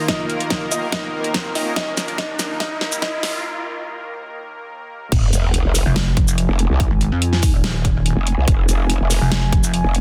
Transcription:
Already playing: D#2 D#3 A#3 F4 A#4 D#5 A#5, riser
0.08 D#4 D#5, kick, snare, closed hi-hat
0.30 closed hi-hat
0.40 closed hi-hat
0.50 kick, snare, closed hi-hat
0.71 D#4 D#5, closed hi-hat, shaker
0.92 D#4 D#5, kick, snare, closed hi-hat
1.24 closed hi-hat
1.34 kick, snare, closed hi-hat
1.55 D#4 D#5, open hi-hat
1.76 D#4 D#5, kick, snare, closed hi-hat
1.97 snare, closed hi-hat, shaker
2.08 closed hi-hat
2.18 D#4 D#5, kick, snare, closed hi-hat
2.39 snare, closed hi-hat, shaker
2.60 D#4 D#5, kick, snare, closed hi-hat
2.81 snare
2.92 closed hi-hat, shaker
3.02 D#4 D#5, kick, snare, closed hi-hat
3.23 snare, open hi-hat
5.12 F1, kick, closed hi-hat, crash, sub drop
5.33 F1, closed hi-hat, shaker
5.54 closed hi-hat
5.65 F1
5.75 open hi-hat, shaker
5.80 G#5
5.86 F1
5.96 snare, closed hi-hat
6.17 kick, closed hi-hat
6.28 shaker
6.38 closed hi-hat
6.49 F1
6.59 closed hi-hat
6.70 C2
6.80 kick, closed hi-hat
6.91 G#1
7.01 closed hi-hat
7.12 F2
7.22 closed hi-hat
7.33 snare
7.43 kick, open hi-hat, shaker
7.54 D#1
7.64 snare, closed hi-hat
7.85 kick, closed hi-hat
8.06 closed hi-hat
8.17 F1
8.27 closed hi-hat
8.38 C2
8.48 F1, kick, closed hi-hat
8.69 F1, closed hi-hat, shaker
8.90 closed hi-hat
9.00 F1
9.11 open hi-hat, shaker
9.21 F1
9.32 snare, closed hi-hat
9.53 kick, closed hi-hat
9.64 shaker
9.74 closed hi-hat
9.84 F1
9.95 closed hi-hat

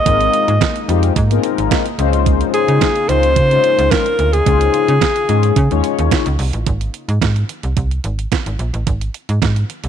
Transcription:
Already playing: G#3 A#3 D#5
0.06 G#1 G#3 C4 D#4 F4 A#4, kick, closed hi-hat
0.21 closed hi-hat
0.34 closed hi-hat
0.48 G#2, closed hi-hat
0.61 kick, snare, closed hi-hat
0.76 closed hi-hat
0.89 F2 G#3 C4 D#4 F4 G4, closed hi-hat
1.03 closed hi-hat
1.16 G#2, kick, closed hi-hat
1.31 G#3 B3 D#4 F4 A#4, closed hi-hat
1.37 C4
1.44 closed hi-hat
1.58 G#1, closed hi-hat
1.71 kick, snare, closed hi-hat
1.86 closed hi-hat
1.99 C#2 C#3 G#3 C#4 D#4 F4 C5, closed hi-hat
2.13 closed hi-hat
2.26 kick, closed hi-hat
2.41 closed hi-hat
2.54 G#4, closed hi-hat
2.68 C#3, closed hi-hat
2.81 kick, snare, closed hi-hat
2.96 closed hi-hat
3.09 C#2 G#3 C#4 D#4 F4 C5, closed hi-hat
3.23 closed hi-hat
3.36 C#3, kick, closed hi-hat
3.51 G#3 C#4 D#4 F4 C5, closed hi-hat
3.64 closed hi-hat
3.79 C#2, closed hi-hat
3.91 A#4, kick, snare, closed hi-hat
4.06 closed hi-hat
4.19 D2, closed hi-hat
4.33 G#4, closed hi-hat
4.46 C#2 G#3 C#4 D#4 F4 C5, kick, closed hi-hat
4.61 closed hi-hat
4.74 closed hi-hat
4.88 C#3, closed hi-hat
5.01 kick, snare, closed hi-hat
5.16 closed hi-hat
5.29 G#2 G#3 C#4 D#4 F4 G#4, closed hi-hat
5.43 closed hi-hat
5.56 C#3, kick, closed hi-hat
5.71 D#2 G#3 C#4 D#4 F4 C#5, closed hi-hat
5.84 closed hi-hat
5.99 D#2, closed hi-hat
6.11 kick, snare, closed hi-hat
6.26 C#2, closed hi-hat
6.39 C2, open hi-hat
6.53 A1, closed hi-hat
6.67 G#1, kick, closed hi-hat
6.81 closed hi-hat
6.94 closed hi-hat
7.08 G#2, closed hi-hat
7.22 G#2, kick, snare, closed hi-hat
7.36 closed hi-hat
7.49 closed hi-hat
7.63 C2, closed hi-hat
7.77 C2, kick, closed hi-hat
7.91 closed hi-hat
8.04 G#1, closed hi-hat
8.19 closed hi-hat
8.32 kick, snare, closed hi-hat
8.46 G#1, closed hi-hat
8.59 A#1, closed hi-hat
8.74 A1, closed hi-hat
8.87 G#1, kick, closed hi-hat
9.01 closed hi-hat
9.14 closed hi-hat
9.29 G#2, closed hi-hat
9.42 G#2, kick, snare, closed hi-hat
9.56 closed hi-hat
9.70 closed hi-hat
9.84 C2, closed hi-hat

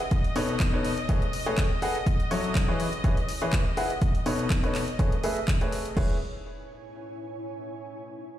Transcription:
Already playing: E4 C#5 D#5 G#5
0.11 B2, kick, closed hi-hat
0.24 closed hi-hat
0.36 B2 D#4 A4 B4 C#5, open hi-hat
0.49 closed hi-hat
0.55 D#4
0.60 kick, clap, closed hi-hat
0.73 B2 D#4 A4 B4 C#5
0.84 open hi-hat
0.98 closed hi-hat
1.09 A2 A3 G#4 A4 B4 C#5, kick, closed hi-hat
1.22 closed hi-hat
1.33 open hi-hat
1.46 A3 G#4 A4 B4 C#5, closed hi-hat
1.53 C#4 B4 G#5
1.58 kick, clap, closed hi-hat
1.82 G#4 A4 B4 F#5, open hi-hat
1.95 closed hi-hat
2.06 E4, kick, closed hi-hat
2.20 closed hi-hat
2.31 F#3 E4 F#4 A4 C#5, open hi-hat
2.40 F#5
2.44 closed hi-hat
2.55 kick, clap, closed hi-hat
2.68 E3 E4 G#4 B4 C#5
2.80 open hi-hat
2.93 closed hi-hat
3.04 E3 E4 G#4 B4 C#5, kick, closed hi-hat
3.17 closed hi-hat
3.21 C#5
3.29 open hi-hat
3.35 G#5
3.42 E3 E4 G#4 B4 C#5, closed hi-hat
3.53 kick, clap, closed hi-hat
3.77 E4 G#4 B4 F#5, open hi-hat
3.90 closed hi-hat
4.02 B2, kick, closed hi-hat
4.15 closed hi-hat
4.26 B2 D#4 A4 B4 C#5, open hi-hat
4.31 D#4
4.39 closed hi-hat
4.50 kick, clap, closed hi-hat
4.63 B2 D#4 A4 B4 C#5, closed hi-hat
4.75 clap, open hi-hat
4.88 closed hi-hat
4.99 A2 A3 G#4 A4 B4 C#5, kick, closed hi-hat
5.12 closed hi-hat
5.24 A3 G#4 A4 B4 E5, open hi-hat
5.37 closed hi-hat
5.48 kick, clap, closed hi-hat
5.61 A3 G#4 A4 B4 C#5, closed hi-hat
5.72 open hi-hat
5.85 closed hi-hat
5.97 E1 E4 G#4 B4 C#5, kick, crash
6.04 C#5
6.12 G#5

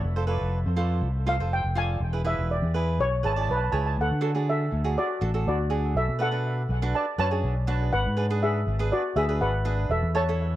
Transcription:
Already playing: D5
0.03 F1
0.16 F4 A4 C5
0.27 F4 A4 B4
0.41 F1
0.66 F2
0.76 F4 A4 C5
1.02 C2
1.27 F4 A4 C5 F5
1.40 F1 F4 A4 C5
1.53 G5
1.64 F1
1.75 F4 A4 D5 G#5
2.00 E1
2.13 E4 G#4 B4
2.25 E4 G#4 B4 E5
2.39 E1
2.51 D5
2.62 E2
2.74 E4 G#4 B4
2.99 B1 C#5
3.23 G#1 E4 G#4 B4 C#5 A5
3.33 G#4 D5 A5
3.38 E4 A5
3.48 B1 B4 A5
3.57 A5
3.64 A5
3.72 C#2 E4 G#4 C#5 A5
3.79 A5
3.86 A5
3.98 D2 A4 F#5
4.11 D3
4.21 D4 F#4 A4
4.35 D4 F#4 G#4
4.50 A4 E5
4.72 D2
4.84 D4 F#4 G#4
4.98 F#4 D5
5.21 A1 D4 F#4 A4
5.34 D4 F#4 A4
5.46 D2 F#4 D5
5.70 D4 F#4 G#4
5.95 B1 A4 E5
6.09 B2
6.19 D4 F#4 A4 B4 F#5
6.31 D4 F#4 B4
6.69 B1
6.82 D4 F#4 B4
6.95 D5 A5
7.18 F#2 D4 F#4 B4 C#5 A5
7.31 D4 F#4 G#4
7.43 B1
7.67 D4 F#4 B4
7.93 G#1 B4 F#5
8.07 G#2
8.17 D4 G#4 B4
8.30 D4 G#4 B4
8.43 G#4 E5
8.67 G#1
8.79 D4 G#4 B4
8.92 F#4 D5
9.16 D2 D4 G#4 B4 E5
9.29 D4 G#4 B4
9.41 G#1 B4 F#5
9.65 D4 G#4 B4
9.89 E1 A4 E5
10.03 E2
10.15 E4 A4 C#5 A5
10.29 E4 A4 C#5

